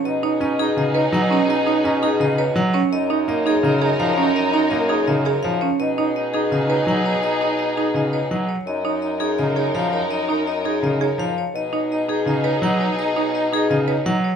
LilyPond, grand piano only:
\new Staff \with { instrumentName = "Grand piano" } { \clef bass \time 4/4 \key b \lydian \tempo 4 = 167 r4 cis'8 r8 cis8 r8 fis8 r8 | r4 cis'8 r8 cis8 r8 fis8 r8 | r4 ais8 r8 cis8 r8 eis8 r8 | r4 ais8 r8 cis8 r8 eis8 r8 |
r2 cis8 r8 fis8 r8 | r2 cis8 r8 fis8 r8 | r2 cis8 r8 eis8 r8 | r2 cis8 r8 eis8 r8 |
r2 cis8 r8 fis8 r8 | r2 cis8 r8 fis8 r8 | }